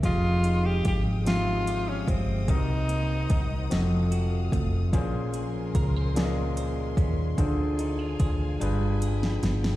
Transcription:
0.00 0.11 C3 medium
0.00 0.94 F3 medium
0.00 2.48 F3 medium
0.00 0.11 A#3 soft
0.00 0.95 C4 medium
0.00 0.12 C#4 medium
0.00 0.95 G4 medium
0.00 kick medium
0.00 closed hi-hat medium
0.04 0.81 F1 loud
0.04 0.68 F4 loud
0.04 0.95 G#4 medium
0.04 0.96 D#5 medium
0.04 2.46 F5 medium
0.04 2.46 G5 medium
0.04 4.90 D#6 medium
0.44 1.26 D#4 medium
0.44 closed hi-hat medium
0.66 0.86 G4 loud
0.85 2.04 G#1 medium
0.85 1.67 G4 medium
0.85 1.03 G4 medium
0.85 kick medium
0.85 closed hi-hat medium
1.25 2.17 F3 medium
1.25 2.18 G#3 medium
1.25 2.17 C4 medium
1.25 3.29 D#4 medium
1.25 1.91 F4 loud
1.25 2.17 G4 medium
1.25 1.33 E5 medium
1.25 snare loud
1.25 closed hi-hat medium
1.34 2.21 F5 medium
1.67 2.57 G4 medium
1.67 closed hi-hat medium
1.89 2.11 C#4 medium
2.07 2.45 G1 medium
2.07 2.56 G#3 medium
2.07 2.51 C4 medium
2.07 kick medium
2.07 closed hi-hat soft
2.47 3.26 C2 loud
2.47 3.39 C3 medium
2.47 3.70 C3 medium
2.47 3.39 C4 medium
2.47 3.71 D#4 medium
2.47 3.40 F#4 medium
2.47 3.40 A#4 medium
2.47 3.69 C5 medium
2.47 3.41 D#5 loud
2.47 4.90 F#5 medium
2.47 3.69 A#5 medium
2.47 kick medium
2.47 closed hi-hat medium
2.89 3.79 A#3 medium
2.89 closed hi-hat medium
3.30 3.67 C2 medium
3.30 3.79 D#4 medium
3.30 kick medium
3.30 closed hi-hat medium
3.70 4.49 F1 medium
3.70 4.62 F3 medium
3.70 7.21 F3 medium
3.70 4.62 C4 medium
3.70 4.62 F#4 medium
3.70 4.93 A4 medium
3.70 4.63 A4 medium
3.70 4.63 D#5 medium
3.70 4.92 F5 medium
3.70 snare loud
3.70 closed hi-hat medium
4.11 5.01 F#4 medium
4.11 closed hi-hat medium
4.52 4.89 F1 medium
4.52 4.93 A3 medium
4.52 kick medium
4.52 closed hi-hat soft
4.92 5.71 A#1 loud
4.92 5.84 A#2 loud
4.92 5.84 A#3 medium
4.92 7.38 A#3 medium
4.92 5.85 C#4 loud
4.92 7.36 C#4 medium
4.92 5.85 G#4 loud
4.92 7.36 A#4 medium
4.92 5.85 C5 loud
4.92 7.36 G#5 medium
4.92 8.57 C6 medium
4.92 kick medium
4.92 closed hi-hat medium
5.34 6.16 G#4 medium
5.34 closed hi-hat medium
5.75 6.94 C#2 medium
5.75 5.96 A#4 medium
5.75 kick medium
5.75 closed hi-hat medium
5.96 6.56 C5 medium
6.15 7.06 A#2 medium
6.15 7.07 A#3 medium
6.15 7.07 C#4 medium
6.15 7.78 G#4 medium
6.15 7.07 G#4 medium
6.15 6.23 D5 medium
6.15 snare loud
6.15 closed hi-hat medium
6.25 7.11 D#5 medium
6.57 7.47 C5 medium
6.57 closed hi-hat medium
6.97 7.34 D#2 medium
6.97 7.46 C#4 medium
6.97 kick medium
6.97 closed hi-hat soft
7.38 8.16 D2 medium
7.38 8.29 D3 medium
7.38 8.69 D3 medium
7.38 8.29 D4 loud
7.38 8.30 F4 medium
7.38 8.30 G#4 medium
7.38 8.30 C5 loud
7.38 8.60 D5 medium
7.38 9.76 F5 medium
7.38 9.76 G#5 medium
7.38 kick medium
7.38 closed hi-hat medium
7.78 7.99 D#4 medium
7.78 closed hi-hat medium
7.99 8.68 F4 medium
8.20 8.57 D2 medium
8.20 8.69 G#4 medium
8.20 kick medium
8.20 closed hi-hat medium
8.60 9.38 G1 loud
8.60 9.51 G3 medium
8.60 9.76 G3 medium
8.60 9.52 D4 medium
8.60 9.52 F4 medium
8.60 9.52 G#4 medium
8.60 9.53 B4 medium
8.60 9.76 G5 medium
8.60 9.76 B5 medium
8.60 closed hi-hat medium
9.02 9.76 G#4 medium
9.02 closed hi-hat medium
9.23 snare medium
9.43 9.76 G1 medium
9.43 9.76 B3 medium
9.43 snare medium
9.43 closed hi-hat soft
9.64 snare loud

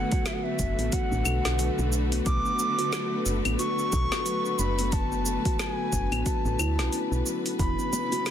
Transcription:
0.00 7.60 D3 medium
0.00 7.60 A3 medium
0.00 0.11 B3 medium
0.00 8.31 F#4 medium
0.00 8.31 B4 medium
0.00 0.28 F#5 loud
0.12 0.25 F#4 medium
0.12 kick loud
0.12 open hi-hat soft
0.12 cabasa soft
0.26 0.43 F#3 medium
0.26 0.35 E5 medium
0.26 snare medium
0.26 open hi-hat medium
0.26 cabasa soft
0.34 0.45 F#5 medium
0.43 0.58 B3 medium
0.43 0.95 E5 loud
0.59 0.74 F#1 medium
0.59 0.77 D4 medium
0.59 kick medium
0.59 open hi-hat soft
0.59 cabasa medium
0.79 0.89 A1 medium
0.79 0.91 B3 loud
0.79 open hi-hat soft
0.79 cabasa soft
0.92 1.11 F#4 medium
0.92 1.93 F#5 loud
0.92 kick medium
0.92 open hi-hat medium
0.92 cabasa soft
1.12 1.23 A1 loud
1.12 1.24 D4 medium
1.12 cabasa soft
1.25 1.41 B1 loud
1.25 1.44 A4 medium
1.25 open hi-hat soft
1.25 cabasa medium
1.25 claves medium
1.45 1.70 B1 medium
1.45 1.58 B4 medium
1.45 snare medium
1.45 open hi-hat soft
1.45 cabasa soft
1.59 1.77 F#3 medium
1.59 open hi-hat medium
1.59 cabasa soft
1.79 2.21 B1 loud
1.79 1.91 D4 medium
1.79 cabasa soft
1.92 2.10 D4 medium
1.92 cabasa medium
2.12 2.24 B3 loud
2.12 open hi-hat soft
2.12 cabasa soft
2.26 2.41 B1 medium
2.26 2.44 B3 medium
2.26 3.22 D6 loud
2.26 kick loud
2.26 open hi-hat medium
2.26 cabasa soft
2.45 2.53 B3 medium
2.45 cabasa soft
2.59 2.77 B3 medium
2.59 cabasa medium
2.78 2.91 F#4 medium
2.78 open hi-hat soft
2.78 cabasa soft
2.92 3.10 F#3 medium
2.92 snare medium
2.92 open hi-hat medium
2.92 cabasa soft
3.12 3.24 B3 medium
3.26 3.41 F#1 medium
3.26 3.43 D4 medium
3.26 open hi-hat soft
3.26 cabasa medium
3.45 3.56 A1 medium
3.45 3.58 B3 loud
3.45 open hi-hat soft
3.45 cabasa soft
3.45 claves medium
3.59 3.78 F#4 medium
3.59 4.60 C#6 loud
3.59 open hi-hat medium
3.59 cabasa soft
3.78 3.91 D4 medium
3.78 cabasa soft
3.92 4.08 B1 loud
3.92 4.11 A4 medium
3.92 kick loud
3.92 open hi-hat soft
3.92 cabasa medium
4.12 4.24 B4 medium
4.12 snare medium
4.12 open hi-hat soft
4.12 cabasa soft
4.26 4.43 F#3 medium
4.26 open hi-hat medium
4.26 cabasa medium
4.45 4.58 D4 medium
4.45 cabasa soft
4.59 5.38 F#1 medium
4.59 4.77 D4 medium
4.59 4.94 B5 loud
4.59 cabasa medium
4.79 4.91 B3 medium
4.79 open hi-hat soft
4.79 cabasa soft
4.92 5.11 B3 medium
4.92 5.61 A5 loud
4.92 kick loud
4.92 open hi-hat medium
4.92 cabasa soft
5.12 5.20 B3 medium
5.12 cabasa soft
5.26 5.44 B3 medium
5.26 cabasa medium
5.45 5.58 F#4 medium
5.45 kick loud
5.45 open hi-hat soft
5.45 cabasa soft
5.59 5.77 F#3 medium
5.59 6.28 G#5 medium
5.59 snare medium
5.59 open hi-hat medium
5.59 cabasa soft
5.79 5.91 B3 medium
5.93 6.08 F#1 medium
5.93 6.10 D4 medium
5.93 kick medium
5.93 open hi-hat soft
5.93 cabasa medium
6.12 6.23 A1 medium
6.12 6.25 B3 loud
6.12 open hi-hat soft
6.12 cabasa soft
6.12 claves medium
6.26 6.45 F#4 medium
6.26 7.26 A5 medium
6.26 kick loud
6.26 open hi-hat medium
6.26 cabasa soft
6.45 6.56 A1 loud
6.45 6.58 D4 medium
6.45 cabasa soft
6.59 6.80 D2 medium
6.59 6.77 E4 loud
6.59 open hi-hat soft
6.59 cabasa medium
6.59 claves medium
6.79 6.89 B1 loud
6.79 6.87 C#4 medium
6.79 snare medium
6.79 open hi-hat soft
6.79 cabasa soft
6.93 7.11 B3 medium
6.93 open hi-hat medium
6.93 cabasa soft
7.12 7.23 B1 loud
7.12 7.25 B3 medium
7.12 cabasa soft
7.26 7.44 F#3 medium
7.26 cabasa medium
7.46 7.58 D4 medium
7.46 open hi-hat soft
7.46 cabasa soft
7.59 7.74 E1 loud
7.59 8.31 C#3 loud
7.59 8.31 E3 medium
7.59 7.78 B3 medium
7.59 8.31 E4 medium
7.59 8.31 B5 loud
7.59 kick loud
7.59 open hi-hat medium
7.59 cabasa soft
7.79 8.31 G#3 medium
7.79 7.87 B3 medium
7.79 cabasa soft
7.88 8.31 E4 medium
7.93 8.11 B3 medium
7.93 muted conga medium
7.93 cabasa medium
8.12 8.25 F#4 medium
8.12 open hi-hat soft
8.12 muted conga soft
8.12 cabasa soft
8.26 8.31 F#3 medium
8.26 snare medium
8.26 open hi-hat medium
8.26 cabasa soft

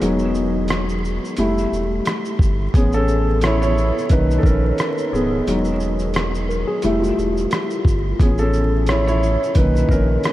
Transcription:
0.00 1.19 E1 loud
0.00 1.34 F#3 medium
0.00 1.34 G#3 soft
0.00 0.32 B3 medium
0.00 1.34 D#4 medium
0.00 0.31 G#4 medium
0.00 closed hi-hat medium
0.00 shaker medium
0.19 shaker soft
0.35 shaker soft
0.68 cross-stick loud
0.68 closed hi-hat medium
0.68 shaker medium
0.89 shaker soft
1.05 shaker soft
1.25 shaker soft
1.37 1.66 F1 loud
1.37 2.36 G3 medium
1.37 2.37 A3 soft
1.37 2.37 E4 medium
1.37 closed hi-hat medium
1.37 shaker medium
1.58 shaker soft
1.72 2.00 E1 medium
1.72 shaker soft
2.05 cross-stick loud
2.05 closed hi-hat medium
2.05 shaker medium
2.25 shaker soft
2.39 2.68 G1 medium
2.39 kick medium
2.39 shaker soft
2.74 3.91 A1 medium
2.74 2.93 B3 medium
2.74 2.94 C#4 medium
2.74 2.94 G#4 medium
2.74 kick loud
2.74 closed hi-hat medium
2.74 shaker medium
2.92 3.40 C#4 medium
2.92 3.44 A4 medium
2.92 shaker soft
3.08 shaker soft
3.41 3.61 E4 medium
3.41 3.60 C#5 loud
3.41 cross-stick loud
3.41 closed hi-hat medium
3.41 shaker medium
3.62 4.08 E4 medium
3.62 4.12 C#5 loud
3.62 shaker soft
3.78 shaker soft
3.98 shaker soft
4.09 4.38 B1 medium
4.09 5.43 D#3 medium
4.09 5.44 A#3 medium
4.09 4.46 C#4 medium
4.09 4.37 D#4 medium
4.09 4.39 B4 medium
4.09 kick medium
4.09 closed hi-hat medium
4.09 shaker medium
4.31 shaker soft
4.38 4.44 A4 medium
4.43 4.72 A#1 loud
4.43 5.10 C#4 medium
4.43 5.09 A#4 medium
4.43 kick medium
4.43 shaker soft
4.78 cross-stick loud
4.78 closed hi-hat medium
4.78 shaker medium
4.98 shaker soft
5.13 5.41 C#1 loud
5.13 5.78 B3 medium
5.13 5.77 G#4 medium
5.13 shaker soft
5.47 6.64 E1 loud
5.47 6.80 F#3 medium
5.47 6.80 G#3 soft
5.47 6.80 D#4 medium
5.47 closed hi-hat medium
5.47 shaker medium
5.65 shaker soft
5.80 shaker soft
5.99 shaker soft
6.14 cross-stick loud
6.14 closed hi-hat medium
6.14 shaker medium
6.35 shaker soft
6.49 6.67 A#4 medium
6.49 shaker soft
6.67 6.82 G#4 medium
6.82 7.12 F1 medium
6.82 7.82 G3 medium
6.82 7.82 A3 soft
6.82 7.01 E4 medium
6.82 7.83 E5 medium
6.82 closed hi-hat medium
6.82 shaker medium
7.02 8.00 F4 medium
7.02 shaker soft
7.18 7.46 E1 medium
7.18 shaker soft
7.37 shaker soft
7.51 cross-stick loud
7.51 closed hi-hat medium
7.51 shaker medium
7.70 shaker soft
7.85 8.13 G1 medium
7.85 kick medium
7.85 shaker soft
8.20 9.37 A1 loud
8.20 8.27 B3 medium
8.20 8.39 C#4 medium
8.20 9.52 G#4 medium
8.20 kick loud
8.20 closed hi-hat medium
8.20 shaker medium
8.38 8.86 C#4 medium
8.38 8.89 A4 medium
8.38 shaker soft
8.53 shaker soft
8.87 9.06 C#5 medium
8.87 cross-stick loud
8.87 closed hi-hat medium
8.87 shaker medium
8.91 9.07 E4 medium
9.07 9.54 E4 medium
9.07 9.58 C#5 loud
9.07 shaker soft
9.23 shaker soft
9.43 shaker soft
9.55 9.84 B1 medium
9.55 10.03 A#2 soft
9.55 10.03 D#3 medium
9.55 9.91 C#4 medium
9.55 9.89 D#4 medium
9.55 9.91 B4 medium
9.55 kick medium
9.55 closed hi-hat medium
9.55 shaker medium
9.76 shaker soft
9.89 10.17 A#1 medium
9.89 10.33 C#4 medium
9.89 10.33 A#4 medium
9.89 kick medium
9.89 shaker soft
10.24 cross-stick loud
10.24 closed hi-hat medium
10.24 shaker medium

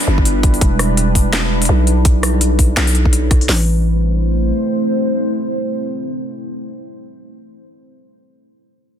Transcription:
0.00 3.45 G3 medium
0.00 3.45 D4 medium
0.00 3.45 E4 medium
0.00 3.45 B4 medium
0.08 0.60 G1 loud
0.18 kick medium
0.25 closed hi-hat medium
0.43 kick loud
0.43 closed hi-hat soft
0.54 open hi-hat soft
0.61 1.68 E1 loud
0.61 kick loud
0.61 closed hi-hat medium
0.79 cross-stick medium
0.79 open hi-hat medium
0.97 closed hi-hat medium
1.15 kick medium
1.15 open hi-hat medium
1.33 snare loud
1.33 closed hi-hat medium
1.62 closed hi-hat medium
1.62 open hi-hat medium
1.69 2.76 B1 loud
1.87 closed hi-hat soft
2.05 kick loud
2.05 closed hi-hat medium
2.23 cross-stick medium
2.23 open hi-hat medium
2.41 closed hi-hat medium
2.59 kick medium
2.59 open hi-hat medium
2.77 3.48 B1 loud
2.77 snare loud
2.77 closed hi-hat medium
2.87 open hi-hat medium
2.95 closed hi-hat soft
3.05 kick medium
3.13 closed hi-hat medium
3.31 kick loud
3.31 cross-stick soft
3.31 closed hi-hat soft
3.41 open hi-hat soft
3.49 4.53 A1 loud
3.49 7.12 A3 medium
3.49 7.12 C4 medium
3.49 7.12 E4 medium
3.49 7.12 C5 medium
3.49 snare loud
3.49 open hi-hat medium

